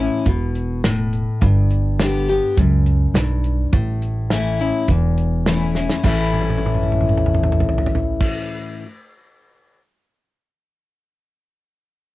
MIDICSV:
0, 0, Header, 1, 4, 480
1, 0, Start_track
1, 0, Tempo, 577478
1, 1180, Time_signature, 4, 2, 24, 8
1, 10096, End_track
2, 0, Start_track
2, 0, Title_t, "Steel-string acoustic guitar"
2, 0, Program_c, 0, 25
2, 0, Note_on_c, 0, 45, 80
2, 0, Note_on_c, 0, 61, 48
2, 0, Note_on_c, 0, 64, 53
2, 171, Note_off_c, 0, 45, 0
2, 210, Note_off_c, 0, 64, 0
2, 218, Note_off_c, 0, 61, 0
2, 220, Note_on_c, 0, 47, 77
2, 676, Note_off_c, 0, 47, 0
2, 698, Note_on_c, 0, 45, 82
2, 1156, Note_off_c, 0, 45, 0
2, 1180, Note_on_c, 0, 43, 86
2, 1661, Note_on_c, 0, 50, 61
2, 1666, Note_on_c, 0, 55, 53
2, 1670, Note_on_c, 0, 59, 63
2, 1676, Note_on_c, 0, 67, 65
2, 1891, Note_off_c, 0, 50, 0
2, 1894, Note_off_c, 0, 55, 0
2, 1896, Note_off_c, 0, 59, 0
2, 1896, Note_off_c, 0, 67, 0
2, 1906, Note_on_c, 0, 67, 56
2, 1920, Note_on_c, 0, 59, 46
2, 2093, Note_off_c, 0, 43, 0
2, 2134, Note_off_c, 0, 67, 0
2, 2141, Note_off_c, 0, 59, 0
2, 2142, Note_on_c, 0, 42, 77
2, 2598, Note_off_c, 0, 42, 0
2, 2623, Note_on_c, 0, 43, 83
2, 3079, Note_off_c, 0, 43, 0
2, 3097, Note_on_c, 0, 45, 84
2, 3583, Note_on_c, 0, 52, 53
2, 3584, Note_on_c, 0, 57, 55
2, 3590, Note_on_c, 0, 61, 61
2, 3598, Note_on_c, 0, 64, 60
2, 3813, Note_off_c, 0, 52, 0
2, 3813, Note_off_c, 0, 57, 0
2, 3816, Note_off_c, 0, 61, 0
2, 3818, Note_off_c, 0, 64, 0
2, 3828, Note_on_c, 0, 64, 60
2, 3835, Note_on_c, 0, 61, 49
2, 4011, Note_off_c, 0, 45, 0
2, 4055, Note_off_c, 0, 64, 0
2, 4059, Note_off_c, 0, 61, 0
2, 4071, Note_on_c, 0, 40, 79
2, 4546, Note_on_c, 0, 52, 59
2, 4555, Note_on_c, 0, 57, 61
2, 4557, Note_on_c, 0, 61, 62
2, 4559, Note_on_c, 0, 64, 58
2, 4774, Note_off_c, 0, 52, 0
2, 4775, Note_off_c, 0, 64, 0
2, 4779, Note_off_c, 0, 57, 0
2, 4780, Note_off_c, 0, 61, 0
2, 4785, Note_on_c, 0, 64, 58
2, 4798, Note_on_c, 0, 61, 46
2, 4978, Note_off_c, 0, 40, 0
2, 5014, Note_off_c, 0, 64, 0
2, 5015, Note_on_c, 0, 45, 80
2, 5020, Note_off_c, 0, 61, 0
2, 5025, Note_on_c, 0, 52, 80
2, 5028, Note_on_c, 0, 57, 84
2, 5034, Note_on_c, 0, 61, 79
2, 5038, Note_on_c, 0, 64, 99
2, 7340, Note_off_c, 0, 45, 0
2, 7340, Note_off_c, 0, 52, 0
2, 7340, Note_off_c, 0, 57, 0
2, 7340, Note_off_c, 0, 61, 0
2, 7340, Note_off_c, 0, 64, 0
2, 10096, End_track
3, 0, Start_track
3, 0, Title_t, "Upright bass"
3, 0, Program_c, 1, 32
3, 214, Note_on_c, 1, 28, 78
3, 1019, Note_off_c, 1, 28, 0
3, 1179, Note_on_c, 1, 31, 85
3, 1982, Note_off_c, 1, 31, 0
3, 2138, Note_on_c, 1, 37, 78
3, 2548, Note_off_c, 1, 37, 0
3, 2611, Note_on_c, 1, 35, 81
3, 3024, Note_off_c, 1, 35, 0
3, 3097, Note_on_c, 1, 33, 82
3, 3901, Note_off_c, 1, 33, 0
3, 4058, Note_on_c, 1, 28, 72
3, 4862, Note_off_c, 1, 28, 0
3, 5017, Note_on_c, 1, 33, 83
3, 6881, Note_off_c, 1, 33, 0
3, 10096, End_track
4, 0, Start_track
4, 0, Title_t, "Drums"
4, 214, Note_on_c, 9, 42, 78
4, 217, Note_on_c, 9, 36, 103
4, 297, Note_off_c, 9, 42, 0
4, 301, Note_off_c, 9, 36, 0
4, 459, Note_on_c, 9, 42, 59
4, 542, Note_off_c, 9, 42, 0
4, 699, Note_on_c, 9, 38, 106
4, 699, Note_on_c, 9, 42, 77
4, 782, Note_off_c, 9, 38, 0
4, 782, Note_off_c, 9, 42, 0
4, 939, Note_on_c, 9, 42, 57
4, 1022, Note_off_c, 9, 42, 0
4, 1175, Note_on_c, 9, 42, 78
4, 1180, Note_on_c, 9, 36, 104
4, 1258, Note_off_c, 9, 42, 0
4, 1263, Note_off_c, 9, 36, 0
4, 1418, Note_on_c, 9, 42, 63
4, 1501, Note_off_c, 9, 42, 0
4, 1658, Note_on_c, 9, 38, 107
4, 1658, Note_on_c, 9, 42, 82
4, 1741, Note_off_c, 9, 38, 0
4, 1741, Note_off_c, 9, 42, 0
4, 1900, Note_on_c, 9, 42, 61
4, 1983, Note_off_c, 9, 42, 0
4, 2139, Note_on_c, 9, 42, 84
4, 2140, Note_on_c, 9, 36, 105
4, 2223, Note_off_c, 9, 36, 0
4, 2223, Note_off_c, 9, 42, 0
4, 2379, Note_on_c, 9, 42, 62
4, 2462, Note_off_c, 9, 42, 0
4, 2619, Note_on_c, 9, 38, 105
4, 2619, Note_on_c, 9, 42, 78
4, 2702, Note_off_c, 9, 38, 0
4, 2702, Note_off_c, 9, 42, 0
4, 2860, Note_on_c, 9, 42, 60
4, 2943, Note_off_c, 9, 42, 0
4, 3098, Note_on_c, 9, 42, 71
4, 3100, Note_on_c, 9, 36, 106
4, 3181, Note_off_c, 9, 42, 0
4, 3183, Note_off_c, 9, 36, 0
4, 3343, Note_on_c, 9, 42, 59
4, 3426, Note_off_c, 9, 42, 0
4, 3577, Note_on_c, 9, 38, 100
4, 3577, Note_on_c, 9, 42, 75
4, 3660, Note_off_c, 9, 38, 0
4, 3660, Note_off_c, 9, 42, 0
4, 3820, Note_on_c, 9, 42, 56
4, 3903, Note_off_c, 9, 42, 0
4, 4057, Note_on_c, 9, 42, 74
4, 4060, Note_on_c, 9, 36, 101
4, 4140, Note_off_c, 9, 42, 0
4, 4143, Note_off_c, 9, 36, 0
4, 4303, Note_on_c, 9, 42, 56
4, 4386, Note_off_c, 9, 42, 0
4, 4540, Note_on_c, 9, 38, 104
4, 4540, Note_on_c, 9, 42, 77
4, 4623, Note_off_c, 9, 38, 0
4, 4623, Note_off_c, 9, 42, 0
4, 4779, Note_on_c, 9, 38, 52
4, 4862, Note_off_c, 9, 38, 0
4, 4899, Note_on_c, 9, 38, 80
4, 4982, Note_off_c, 9, 38, 0
4, 5019, Note_on_c, 9, 49, 87
4, 5021, Note_on_c, 9, 36, 99
4, 5102, Note_off_c, 9, 49, 0
4, 5104, Note_off_c, 9, 36, 0
4, 5263, Note_on_c, 9, 48, 41
4, 5334, Note_off_c, 9, 48, 0
4, 5334, Note_on_c, 9, 48, 45
4, 5399, Note_off_c, 9, 48, 0
4, 5399, Note_on_c, 9, 48, 50
4, 5470, Note_off_c, 9, 48, 0
4, 5470, Note_on_c, 9, 48, 51
4, 5535, Note_off_c, 9, 48, 0
4, 5535, Note_on_c, 9, 48, 51
4, 5607, Note_on_c, 9, 47, 52
4, 5618, Note_off_c, 9, 48, 0
4, 5678, Note_off_c, 9, 47, 0
4, 5678, Note_on_c, 9, 47, 49
4, 5753, Note_off_c, 9, 47, 0
4, 5753, Note_on_c, 9, 47, 63
4, 5824, Note_off_c, 9, 47, 0
4, 5824, Note_on_c, 9, 47, 67
4, 5893, Note_off_c, 9, 47, 0
4, 5893, Note_on_c, 9, 47, 68
4, 5964, Note_on_c, 9, 45, 69
4, 5976, Note_off_c, 9, 47, 0
4, 6035, Note_off_c, 9, 45, 0
4, 6035, Note_on_c, 9, 45, 67
4, 6105, Note_off_c, 9, 45, 0
4, 6105, Note_on_c, 9, 45, 73
4, 6179, Note_off_c, 9, 45, 0
4, 6179, Note_on_c, 9, 45, 74
4, 6252, Note_off_c, 9, 45, 0
4, 6252, Note_on_c, 9, 45, 75
4, 6320, Note_on_c, 9, 43, 77
4, 6335, Note_off_c, 9, 45, 0
4, 6390, Note_off_c, 9, 43, 0
4, 6390, Note_on_c, 9, 43, 80
4, 6468, Note_off_c, 9, 43, 0
4, 6468, Note_on_c, 9, 43, 81
4, 6536, Note_off_c, 9, 43, 0
4, 6536, Note_on_c, 9, 43, 81
4, 6608, Note_off_c, 9, 43, 0
4, 6608, Note_on_c, 9, 43, 90
4, 6691, Note_off_c, 9, 43, 0
4, 6819, Note_on_c, 9, 49, 90
4, 6821, Note_on_c, 9, 36, 102
4, 6902, Note_off_c, 9, 49, 0
4, 6904, Note_off_c, 9, 36, 0
4, 10096, End_track
0, 0, End_of_file